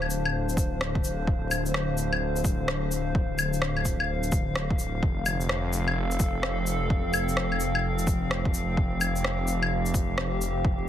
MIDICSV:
0, 0, Header, 1, 4, 480
1, 0, Start_track
1, 0, Key_signature, -1, "minor"
1, 0, Tempo, 468750
1, 1303, Time_signature, 4, 2, 24, 8
1, 11148, End_track
2, 0, Start_track
2, 0, Title_t, "Ambient pad"
2, 0, Program_c, 0, 92
2, 0, Note_on_c, 0, 50, 82
2, 0, Note_on_c, 0, 62, 82
2, 0, Note_on_c, 0, 72, 71
2, 0, Note_on_c, 0, 77, 82
2, 5140, Note_off_c, 0, 50, 0
2, 5149, Note_on_c, 0, 53, 74
2, 5501, Note_on_c, 0, 60, 81
2, 5727, Note_on_c, 0, 69, 83
2, 6061, Note_off_c, 0, 62, 0
2, 6497, Note_off_c, 0, 72, 0
2, 8829, Note_on_c, 0, 67, 83
2, 8962, Note_off_c, 0, 69, 0
2, 11148, Note_off_c, 0, 53, 0
2, 11148, Note_off_c, 0, 60, 0
2, 11148, Note_off_c, 0, 67, 0
2, 11148, Note_off_c, 0, 77, 0
2, 11148, End_track
3, 0, Start_track
3, 0, Title_t, "Detuned saw bass"
3, 0, Program_c, 1, 39
3, 0, Note_on_c, 1, 26, 86
3, 5126, Note_off_c, 1, 26, 0
3, 5146, Note_on_c, 1, 29, 84
3, 11148, Note_off_c, 1, 29, 0
3, 11148, End_track
4, 0, Start_track
4, 0, Title_t, "Drums"
4, 19, Note_on_c, 9, 75, 37
4, 106, Note_on_c, 9, 82, 57
4, 121, Note_off_c, 9, 75, 0
4, 209, Note_off_c, 9, 82, 0
4, 261, Note_on_c, 9, 75, 52
4, 364, Note_off_c, 9, 75, 0
4, 503, Note_on_c, 9, 82, 31
4, 585, Note_on_c, 9, 36, 105
4, 590, Note_off_c, 9, 82, 0
4, 590, Note_on_c, 9, 82, 57
4, 687, Note_off_c, 9, 36, 0
4, 692, Note_off_c, 9, 82, 0
4, 829, Note_on_c, 9, 37, 110
4, 931, Note_off_c, 9, 37, 0
4, 976, Note_on_c, 9, 36, 109
4, 1068, Note_on_c, 9, 82, 58
4, 1079, Note_off_c, 9, 36, 0
4, 1170, Note_off_c, 9, 82, 0
4, 1305, Note_on_c, 9, 36, 122
4, 1407, Note_off_c, 9, 36, 0
4, 1548, Note_on_c, 9, 75, 64
4, 1548, Note_on_c, 9, 82, 56
4, 1650, Note_off_c, 9, 75, 0
4, 1650, Note_off_c, 9, 82, 0
4, 1697, Note_on_c, 9, 82, 31
4, 1785, Note_on_c, 9, 37, 112
4, 1800, Note_off_c, 9, 82, 0
4, 1887, Note_off_c, 9, 37, 0
4, 2024, Note_on_c, 9, 82, 57
4, 2127, Note_off_c, 9, 82, 0
4, 2177, Note_on_c, 9, 75, 49
4, 2279, Note_off_c, 9, 75, 0
4, 2419, Note_on_c, 9, 82, 31
4, 2505, Note_on_c, 9, 36, 107
4, 2506, Note_off_c, 9, 82, 0
4, 2506, Note_on_c, 9, 82, 56
4, 2607, Note_off_c, 9, 36, 0
4, 2608, Note_off_c, 9, 82, 0
4, 2745, Note_on_c, 9, 37, 111
4, 2848, Note_off_c, 9, 37, 0
4, 2987, Note_on_c, 9, 82, 57
4, 3089, Note_off_c, 9, 82, 0
4, 3225, Note_on_c, 9, 36, 125
4, 3327, Note_off_c, 9, 36, 0
4, 3467, Note_on_c, 9, 75, 60
4, 3467, Note_on_c, 9, 82, 54
4, 3570, Note_off_c, 9, 75, 0
4, 3570, Note_off_c, 9, 82, 0
4, 3617, Note_on_c, 9, 82, 29
4, 3703, Note_on_c, 9, 37, 110
4, 3719, Note_off_c, 9, 82, 0
4, 3806, Note_off_c, 9, 37, 0
4, 3856, Note_on_c, 9, 75, 35
4, 3945, Note_on_c, 9, 36, 61
4, 3945, Note_on_c, 9, 82, 54
4, 3958, Note_off_c, 9, 75, 0
4, 4047, Note_off_c, 9, 82, 0
4, 4048, Note_off_c, 9, 36, 0
4, 4096, Note_on_c, 9, 75, 48
4, 4199, Note_off_c, 9, 75, 0
4, 4335, Note_on_c, 9, 82, 28
4, 4424, Note_off_c, 9, 82, 0
4, 4424, Note_on_c, 9, 82, 53
4, 4426, Note_on_c, 9, 36, 111
4, 4527, Note_off_c, 9, 82, 0
4, 4528, Note_off_c, 9, 36, 0
4, 4665, Note_on_c, 9, 37, 110
4, 4767, Note_off_c, 9, 37, 0
4, 4818, Note_on_c, 9, 36, 111
4, 4905, Note_on_c, 9, 82, 56
4, 4920, Note_off_c, 9, 36, 0
4, 5007, Note_off_c, 9, 82, 0
4, 5147, Note_on_c, 9, 36, 119
4, 5249, Note_off_c, 9, 36, 0
4, 5386, Note_on_c, 9, 75, 61
4, 5386, Note_on_c, 9, 82, 54
4, 5488, Note_off_c, 9, 75, 0
4, 5488, Note_off_c, 9, 82, 0
4, 5536, Note_on_c, 9, 82, 29
4, 5625, Note_on_c, 9, 37, 106
4, 5639, Note_off_c, 9, 82, 0
4, 5728, Note_off_c, 9, 37, 0
4, 5869, Note_on_c, 9, 82, 51
4, 5971, Note_off_c, 9, 82, 0
4, 6018, Note_on_c, 9, 75, 48
4, 6120, Note_off_c, 9, 75, 0
4, 6258, Note_on_c, 9, 82, 29
4, 6346, Note_off_c, 9, 82, 0
4, 6346, Note_on_c, 9, 82, 53
4, 6347, Note_on_c, 9, 36, 104
4, 6448, Note_off_c, 9, 82, 0
4, 6450, Note_off_c, 9, 36, 0
4, 6585, Note_on_c, 9, 37, 105
4, 6688, Note_off_c, 9, 37, 0
4, 6827, Note_on_c, 9, 82, 54
4, 6929, Note_off_c, 9, 82, 0
4, 7067, Note_on_c, 9, 36, 115
4, 7169, Note_off_c, 9, 36, 0
4, 7307, Note_on_c, 9, 75, 63
4, 7307, Note_on_c, 9, 82, 54
4, 7409, Note_off_c, 9, 75, 0
4, 7409, Note_off_c, 9, 82, 0
4, 7460, Note_on_c, 9, 82, 29
4, 7545, Note_on_c, 9, 37, 99
4, 7562, Note_off_c, 9, 82, 0
4, 7647, Note_off_c, 9, 37, 0
4, 7699, Note_on_c, 9, 75, 36
4, 7785, Note_on_c, 9, 82, 51
4, 7801, Note_off_c, 9, 75, 0
4, 7887, Note_off_c, 9, 82, 0
4, 7937, Note_on_c, 9, 75, 51
4, 8039, Note_off_c, 9, 75, 0
4, 8178, Note_on_c, 9, 82, 29
4, 8265, Note_on_c, 9, 36, 101
4, 8266, Note_off_c, 9, 82, 0
4, 8266, Note_on_c, 9, 82, 53
4, 8368, Note_off_c, 9, 36, 0
4, 8369, Note_off_c, 9, 82, 0
4, 8508, Note_on_c, 9, 37, 103
4, 8611, Note_off_c, 9, 37, 0
4, 8657, Note_on_c, 9, 36, 103
4, 8747, Note_on_c, 9, 82, 56
4, 8759, Note_off_c, 9, 36, 0
4, 8849, Note_off_c, 9, 82, 0
4, 8984, Note_on_c, 9, 36, 112
4, 9086, Note_off_c, 9, 36, 0
4, 9226, Note_on_c, 9, 75, 66
4, 9226, Note_on_c, 9, 82, 55
4, 9329, Note_off_c, 9, 75, 0
4, 9329, Note_off_c, 9, 82, 0
4, 9378, Note_on_c, 9, 82, 30
4, 9467, Note_on_c, 9, 37, 98
4, 9481, Note_off_c, 9, 82, 0
4, 9569, Note_off_c, 9, 37, 0
4, 9704, Note_on_c, 9, 82, 54
4, 9806, Note_off_c, 9, 82, 0
4, 9857, Note_on_c, 9, 75, 52
4, 9959, Note_off_c, 9, 75, 0
4, 10095, Note_on_c, 9, 82, 29
4, 10182, Note_on_c, 9, 36, 100
4, 10185, Note_off_c, 9, 82, 0
4, 10185, Note_on_c, 9, 82, 54
4, 10284, Note_off_c, 9, 36, 0
4, 10288, Note_off_c, 9, 82, 0
4, 10421, Note_on_c, 9, 37, 98
4, 10524, Note_off_c, 9, 37, 0
4, 10666, Note_on_c, 9, 82, 57
4, 10768, Note_off_c, 9, 82, 0
4, 10901, Note_on_c, 9, 36, 119
4, 11004, Note_off_c, 9, 36, 0
4, 11148, End_track
0, 0, End_of_file